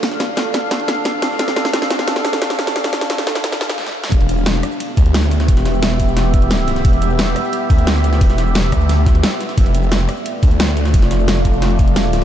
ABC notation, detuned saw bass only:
X:1
M:4/4
L:1/8
Q:1/4=176
K:Ephr
V:1 name="Detuned saw bass" clef=bass
z8 | z8 | z8 | E,,,3 z2 D,,3 |
E,,,3 E,,,4- E,,, | E,,,3 z2 D,,3 | E,,,3 D,,3 z2 | F,,,3 z2 D,,3 |
F,,,3 F,,,4- F,,, |]